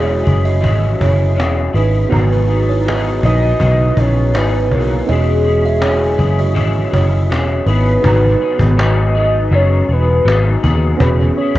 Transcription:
Already playing: E1 F#3 B3 C#4 E4 F#4 G#4
0.08 cajon slap
0.23 F#1 C#4 E4 G#4, cajon bass
0.45 F#4 D#5, cajon slap
0.61 G#1 E3 F#3 C#4 E4 G#4, cajon bass, cajon slap
0.98 F#1 E4 G#4 C#5, cajon bass
1.03 C#4
1.20 cajon slap
1.35 E1 F#3 C#4 E4 G#4
1.40 cajon slap
1.58 cajon slap
1.73 G#1 C#4 D#4 E4 G#4 B4, cajon slap
1.95 cajon slap
2.09 G#1 G#2 D#3 F#3 B3 D#4 F#4 G#4, cajon bass
2.14 A#5
2.32 D#4 B4
2.47 F#3 B3 D#4 G#4, cajon slap
2.68 E4 C#5, cajon slap
2.85 F#3 B3 D#4 G#4 D#5, cajon slap
2.89 F#4
3.05 cajon slap
3.22 A#1 F#3 B3 D#4 G#4 B4 D#5, cajon bass
3.43 cajon slap
3.59 B1 G#2 D#3 F#3 B3 D#4 G#4, cajon bass, cajon slap
3.97 A#1 F#3 B3 D#4 E4 G#4 C#5, cajon bass
4.16 cajon slap
4.34 G#1 F#3 B3 D#4 G#4 B4, cajon slap
4.38 B4
4.53 cajon slap
4.71 B1 B3 D#4 E4 G#4 A#4 C#5, cajon bass
4.76 F#3
4.90 cajon slap
5.06 E1 E3 F#3 B3 C#4 F#4 G#4 D#5, cajon slap
5.11 C#4 E4 G#4
5.26 cajon slap
5.44 C#4 E4 G#4, cajon slap
5.63 G#4 E5, cajon slap
5.80 F#3 C#4 E4 G#4 C#5, cajon slap
5.99 cajon slap
6.18 F#1 E4 G#4, cajon bass
6.22 C#4
6.38 F#4 D#5, cajon slap
6.54 G#1 E3 F#3 C#4 E4 G#4, cajon bass, cajon slap
6.76 cajon slap
6.90 F#1 E4 G#4 C#5, cajon bass
6.95 C#4 E4, cajon slap
7.12 cajon slap
7.29 E1 F#3 C#4 E4 G#4, cajon slap
7.66 G#1 D#4 E4 G#4 B4, cajon slap
7.70 C#4
7.87 cajon slap
8.02 G#1 G#2 D#3 F#3 B3 D#4 F#4, cajon bass
8.06 G#4 A#5
8.22 cajon slap
8.41 B3 D#4 G#4, cajon slap
8.45 F#3
8.59 G#1, cajon bass
8.77 F#3 B3 D#4 G#4 D#5, cajon slap
8.97 cajon slap
9.15 F#3 B3 D#4 G#4, cajon slap
9.34 cajon slap
9.51 F#1 G#2 D#3 F#3 B3 D#4 G#4 C#5, cajon slap
9.71 cajon slap
9.89 E1 B3 D#4 G#4, cajon slap
9.91 F#3 B4, cajon slap
10.08 cajon slap
10.25 G#1 F#3 B3 D#4, cajon slap
10.29 G#4
10.45 cajon slap
10.63 D#2 B3 D#4 G#4, cajon bass
10.67 F#3
10.83 cajon slap
10.97 E1 E3 F#3 B3 C#4 F#4 B4, cajon bass
11.01 C#4 E4 G#4
11.19 cajon slap
11.37 E4 G#4 C#5, cajon slap
11.41 C#4
11.55 E1, cajon bass

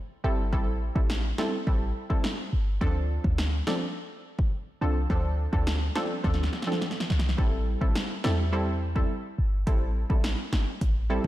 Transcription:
0.24 G1 G3 C4 E4 A4
0.52 A1 G3 C4 E4 A4, kick
0.95 A1 G3 C4 E4 A4, kick
1.10 snare
1.38 G3 C4 E4 A4, snare
1.67 A1 G3 C4 E4 A4, kick
2.10 G3 C4 E4 A4, kick
2.24 snare
2.53 G1
2.81 D2 F3 C4 D4 A4, kick
3.24 D2, kick
3.38 snare
3.67 F3 C4 D4 A4, snare
4.39 kick
4.81 C2 F3 C4 D4 A4
5.10 D2 F3 C4 D4 A4, kick
5.52 D2 F3 C4 D4 A4, kick
5.67 cross-stick, snare
5.95 F3 C4 D4 A4, snare
6.24 D2 F3 C4 D4 A4, kick, snare
6.34 snare
6.43 snare
6.53 snare
6.62 snare
6.67 F3 C4 D4 A4
6.72 snare
6.81 snare
6.91 snare
7.00 snare
7.10 C2, snare
7.19 snare
7.29 snare
7.38 A1 G3 C4 E4 A4, kick
7.81 A1 G3 C4 E4 A4, kick
7.95 snare
8.24 E2 G3 C4 E4 A4, snare
8.52 G3 C4 E4 A4
8.95 G3 C4 E4 A4, kick
9.38 G1
9.67 A1 G3 C4 E4 A4, kick, closed hi-hat
10.10 A1 G3 C4 E4 A4, kick
10.24 snare, closed hi-hat
10.52 G1, snare
10.81 A1, kick, closed hi-hat
11.09 G3 C4 E4 A4

